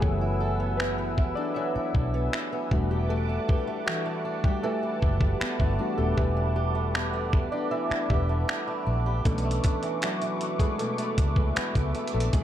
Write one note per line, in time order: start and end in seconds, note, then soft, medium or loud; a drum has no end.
0.00 1.33 F#1 loud
0.00 0.76 E3 medium
0.00 0.02 F#3 soft
0.00 1.56 F#3 medium
0.00 0.53 F#3 medium
0.00 2.74 G#3 medium
0.00 0.03 A3 medium
0.00 0.54 A3 medium
0.00 0.03 B3 medium
0.00 0.59 B3 medium
0.00 0.54 B3 soft
0.00 0.03 E4 medium
0.00 0.21 E4 medium
0.00 0.54 E4 medium
0.00 2.74 G4 medium
0.00 2.73 G#4 medium
0.00 0.40 A4 medium
0.00 2.74 A4 medium
0.00 0.77 B4 medium
0.00 2.68 B4 medium
0.00 2.68 F#5 medium
0.00 2.68 G#5 medium
0.00 2.68 E6 medium
0.00 kick loud
0.21 0.79 E4 medium
0.40 1.37 A4 medium
0.60 0.98 B3 medium
0.77 1.34 B3 medium
0.77 1.17 E4 medium
0.77 1.32 B4 medium
0.77 finger snap loud
0.98 2.14 B3 medium
1.18 1.75 E4 medium
1.18 kick medium
1.35 1.56 D4 medium
1.35 1.94 A4 medium
1.35 1.56 D5 loud
1.54 2.71 F#3 medium
1.54 2.68 E4 medium
1.54 2.67 E5 medium
1.75 2.33 E4 medium
1.75 muted fingered electric bass stroke soft
1.95 2.28 B1 medium
1.95 2.90 A4 medium
1.95 kick medium
2.14 2.52 B3 medium
2.33 3.29 E4 medium
2.33 finger snap loud
2.52 3.67 B3 medium
2.71 3.38 E1 medium
2.71 3.10 E3 medium
2.71 4.45 G3 medium
2.71 3.10 A3 soft
2.71 5.76 D4 soft
2.71 3.85 F#4 medium
2.71 12.44 B4 medium
2.71 9.22 F#5 medium
2.71 9.22 A5 medium
2.71 12.44 D6 medium
2.71 kick loud
2.91 3.47 G4 medium
3.09 4.63 E3 medium
3.09 3.84 A3 medium
3.09 3.89 A4 medium
3.29 3.86 D4 medium
3.48 4.43 G4 medium
3.48 kick loud
3.67 4.05 A3 medium
3.86 4.41 E3 medium
3.86 4.25 D4 medium
3.86 4.46 F#4 medium
3.86 finger snap loud
4.06 5.21 A3 medium
4.25 4.82 D4 medium
4.44 4.55 G3 medium
4.44 4.53 G4 medium
4.44 5.01 G4 medium
4.44 kick medium
4.63 6.17 E3 medium
4.63 5.38 A3 medium
4.63 5.43 A4 medium
4.83 5.40 D4 medium
5.02 5.36 F#1 medium
5.02 5.97 G4 medium
5.02 kick medium
5.21 5.60 A3 medium
5.21 kick medium
5.40 5.95 B3 medium
5.40 5.78 D4 medium
5.40 6.00 B4 medium
5.40 finger snap loud
5.40 muted fingered electric bass stroke soft
5.60 5.77 G1 medium
5.60 6.75 A3 medium
5.60 kick medium
5.79 6.18 G3 medium
5.79 5.98 A3 soft
5.79 6.36 D4 medium
5.79 6.91 D4 soft
5.79 6.91 F#4 medium
5.97 6.15 D#1 medium
5.97 6.17 A3 medium
5.97 6.55 G4 medium
5.97 6.18 A4 medium
6.17 7.48 E1 loud
6.17 7.71 E3 medium
6.17 6.91 G3 medium
6.17 6.97 G4 medium
6.17 kick loud
6.37 6.94 D4 medium
6.56 7.51 G4 medium
6.75 7.13 A3 medium
6.94 7.49 B3 medium
6.94 7.32 D4 medium
6.94 7.54 B4 medium
6.94 finger snap loud
7.14 8.29 A3 medium
7.33 7.90 D4 medium
7.33 kick medium
7.52 7.71 D4 medium
7.52 8.09 G4 medium
7.52 7.72 D5 loud
7.71 9.66 E3 medium
7.71 8.84 E4 medium
7.71 8.83 E5 medium
7.90 8.48 D4 medium
7.90 finger snap medium
7.90 muted fingered electric bass stroke soft
8.10 8.43 E1 loud
8.10 9.05 G4 medium
8.10 kick medium
8.29 8.67 A3 medium
8.48 8.86 D4 medium
8.48 finger snap loud
8.67 9.44 A3 medium
8.86 9.20 A#1 medium
8.86 9.63 D4 medium
9.06 9.33 G4 medium
9.25 9.59 B1 loud
9.25 10.78 B2 medium
9.25 10.37 E3 medium
9.25 9.99 A3 medium
9.25 10.37 C#4 soft
9.25 10.37 D4 medium
9.25 9.98 A4 medium
9.25 12.44 E5 medium
9.25 12.30 C#6 medium
9.25 kick loud
9.25 closed hi-hat medium
9.38 closed hi-hat medium
9.44 10.02 A3 medium
9.51 closed hi-hat medium
9.63 10.60 D4 medium
9.63 kick loud
9.63 closed hi-hat medium
9.83 10.21 E3 medium
9.83 closed hi-hat soft
10.02 10.57 F#3 medium
10.02 10.41 A3 medium
10.02 10.56 F#4 medium
10.02 finger snap loud
10.02 closed hi-hat medium
10.22 11.37 E3 medium
10.22 closed hi-hat soft
10.41 10.98 A3 medium
10.41 closed hi-hat medium
10.59 10.79 G#3 medium
10.59 11.17 D4 medium
10.59 10.80 G#4 medium
10.59 kick medium
10.59 closed hi-hat soft
10.79 12.33 B2 medium
10.79 11.53 A3 medium
10.79 11.58 A4 medium
10.79 closed hi-hat medium
10.98 11.56 A3 medium
10.98 closed hi-hat medium
11.17 11.51 C#2 medium
11.17 12.14 D4 medium
11.17 kick medium
11.17 closed hi-hat medium
11.36 11.75 E3 medium
11.36 kick medium
11.56 11.94 A3 medium
11.56 12.11 B3 medium
11.56 12.15 B4 medium
11.56 finger snap loud
11.56 muted fingered electric bass stroke soft
11.56 closed hi-hat medium
11.75 11.92 C#2 medium
11.75 12.44 E3 medium
11.75 kick medium
11.75 closed hi-hat soft
11.95 12.44 A3 medium
11.95 closed hi-hat soft
12.07 closed hi-hat medium
12.14 12.31 A#1 medium
12.14 12.33 A3 medium
12.14 12.44 D4 medium
12.14 12.34 A4 medium
12.20 closed hi-hat medium
12.33 12.44 B1 loud
12.33 12.44 B2 medium
12.33 12.44 G#3 medium
12.33 12.44 G#4 medium
12.33 12.44 B5 medium
12.33 kick loud
12.33 closed hi-hat medium